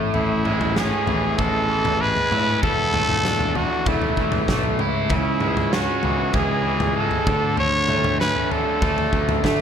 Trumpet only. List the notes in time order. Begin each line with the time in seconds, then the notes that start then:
0.14 E4
0.77 G#4
1.39 A4
2.01 B4
2.63 A4
3.56 F#4
3.87 E4
5.11 E4
5.72 F#4
6.35 G#4
6.97 A4
7.59 C#5
8.20 B4
8.51 A4